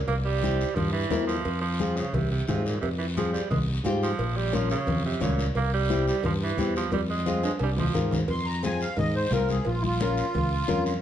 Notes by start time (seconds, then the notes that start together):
0.07 C2 A#3, cowbell, high conga, long guiro
0.25 G3
0.41 C4 E4 G4, cowbell, high conga, short guiro
0.61 short guiro
0.75 G2 F3, cowbell, high conga, low conga, long guiro
0.92 E3
1.10 E2 C4 E4 A#4, cowbell, high conga, low timbale, short guiro
1.27 F3, short guiro
1.45 F2, cowbell, high conga, long guiro
1.61 F3
1.79 C4 F4 G#4, cowbell, high conga, short guiro
1.97 C#3, short guiro
2.13 C2 C3, cowbell, high conga, low conga, long guiro
2.31 C3
2.48 G#2 C3 C4 F4 G#4, cowbell, high conga, low conga, low timbale, short guiro
2.65 A#2, short guiro
2.81 F2 C3, cowbell, high conga, long guiro
2.99 E3
3.17 F3 C4 F4 G#4, cowbell, high conga, short guiro
3.33 G3, short guiro
3.50 C2 G#3, cowbell, high conga, low conga, long guiro
3.84 G#2 C4 F4 G4, cowbell, high conga, low timbale, short guiro
4.03 F3, short guiro
4.19 A#1, cowbell, long guiro
4.37 G3
4.52 F3 C#4 F4 A#4, cowbell, high conga, short guiro
4.70 C#3, short guiro
4.87 F2, cowbell, high conga, low conga, long guiro
5.05 C3
5.20 C#2 A#2 C#4 F4 C#5, cowbell, high conga, low conga, low timbale, short guiro
5.39 short guiro
5.55 C2 A#3, cowbell, high conga, long guiro
5.74 G3
5.89 C4 E4 G4, cowbell, high conga, short guiro
6.08 G3, short guiro
6.23 G2 F3, cowbell, high conga, low conga, long guiro
6.43 E3
6.57 E2 C4 E4 G4, cowbell, high conga, short guiro
6.76 F3, short guiro
6.91 F2 G3, cowbell, high conga, long guiro
7.10 G#3
7.26 C4 F4 G#4, cowbell, high conga, short guiro
7.43 G#3, high timbale, short guiro
7.59 C2 G3, cowbell, high timbale, long guiro
7.77 F3, low conga, low timbale
7.94 G#2 C4 F4 A#4, cowbell, low conga, short guiro
8.11 low conga, low timbale, short guiro
8.28 F2 C6, cowbell, high conga, long guiro
8.45 A#5
8.63 C4 F4 G#4 G#5, cowbell, high conga, short guiro
8.81 F5, short guiro
8.97 G#2 D#5, cowbell, high conga, low conga, long guiro
9.16 C5
9.30 C2 C4 F4 A#4, cowbell, high conga, low timbale, short guiro
9.49 G#4, high conga, short guiro
9.65 A#1 F4, cowbell, high conga, long guiro
9.82 E4, high conga
9.86 F4
10.00 C#4 F4 A#4, cowbell, high conga, short guiro
10.17 short guiro
10.34 C#2, cowbell, high conga, low conga, long guiro
10.68 F2 C#4 F4 A#4, cowbell, high conga, low conga, short guiro
10.86 short guiro